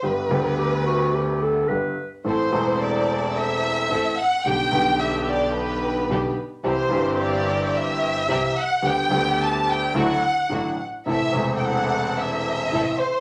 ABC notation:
X:1
M:4/4
L:1/16
Q:1/4=109
K:G
V:1 name="Violin section"
B12 z4 | c4 d4 e6 f2 | g4 e3/2 e/2 d2 B6 z2 | c4 d4 e6 f2 |
g4 a2 g2 f6 z2 | e3- e/2 g/2 f4 e6 c2 |]
V:2 name="Clarinet"
z4 G2 F2 G2 A2 B3 z | z16 | z16 | z16 |
z16 | z16 |]
V:3 name="String section"
z16 | [CEA]2 [CEA]8- [CEA]2 [CEA]2 z2 | [B,DG]2 [B,DG]8- [B,DG]2 [B,DG]2 z2 | [CEG]2 [CEG]8- [CEG]2 [CEG]2 z2 |
[B,DG]2 [B,DG]6 [DEF]2 z2 [DEF]2 z2 | [CEA]2 [CEA]8- [CEA]2 [CEA]2 z2 |]
V:4 name="Upright piano" clef=bass
[G,,,G,,D,G,B,G]2 [D,,D,G,B,G]8- [D,,D,G,B,G]2 [G,,,G,,D,G,B,G]2 z2 | [A,,,A,,E,A,CA]2 [E,,,E,,E,A,CA]8- [E,,,E,,E,A,CA]2 [A,,,A,,E,A,CA]2 z2 | [B,,,B,,D,G,B,G]2 [B,,,B,,D,G,B,G]8- [B,,,B,,D,G,B,G]2 [B,,,B,,D,G,B,G]2 z2 | [C,,C,E,G,CG]2 [G,,,G,,E,G,CG]8- [G,,,G,,E,G,CG]2 [C,,C,E,G,CG]2 z2 |
[D,,D,G,B,G]2 [D,,D,G,B,G]6 [D,,D,F,A,E]2 z2 [A,,,A,,D,F,A,E]2 z2 | [A,,,A,,C,E,A,E]2 [E,,,E,,C,E,A,E]8- [E,,,E,,C,E,A,E]2 [A,,,A,,C,E,A,E]2 z2 |]
V:5 name="Double bass" clef=bass
G,,,2 D,,8- D,,2 G,,,2 z2 | A,,,2 E,,,8- E,,,2 A,,,2 z2 | B,,,2 B,,,8- B,,,2 B,,,2 z2 | C,,2 G,,,8- G,,,2 C,,2 z2 |
D,,2 D,,6 D,,2 z2 A,,,2 z2 | A,,,2 E,,,8- E,,,2 A,,,2 z2 |]